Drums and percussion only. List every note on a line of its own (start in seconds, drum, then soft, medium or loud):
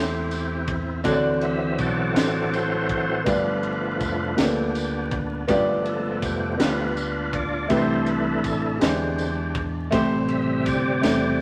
0.31 ride soft
0.31 tambourine medium
0.67 kick medium
0.67 ride soft
1.04 kick loud
1.04 ride medium
1.04 tambourine medium
1.41 ride soft
1.78 kick medium
1.78 ride soft
1.78 tambourine soft
2.16 snare loud
2.16 ride loud
2.16 tambourine medium
2.53 ride soft
2.53 tambourine medium
2.89 kick medium
2.89 ride soft
3.26 kick loud
3.26 ride medium
3.26 tambourine medium
3.63 ride soft
4.00 kick medium
4.00 ride soft
4.00 tambourine soft
4.38 snare loud
4.38 ride medium
4.38 tambourine medium
4.75 ride soft
4.75 tambourine medium
5.11 kick medium
5.11 ride soft
5.48 kick loud
5.48 ride medium
5.48 tambourine medium
5.85 ride soft
6.22 kick medium
6.22 ride soft
6.22 tambourine medium
6.60 snare loud
6.60 ride medium
6.60 tambourine medium
6.97 ride soft
6.97 tambourine medium
7.33 kick medium
7.33 ride soft
7.70 kick loud
7.70 ride medium
7.70 tambourine medium
8.06 ride soft
8.44 kick medium
8.44 ride soft
8.44 tambourine soft
8.81 snare loud
8.81 ride medium
8.81 tambourine medium
9.18 ride soft
9.18 tambourine medium
9.55 kick medium
9.55 ride soft
9.92 kick loud
9.92 ride medium
9.92 tambourine medium
10.29 ride soft
10.66 kick medium
10.66 ride soft
10.66 tambourine medium
11.03 snare loud
11.03 ride medium
11.03 tambourine medium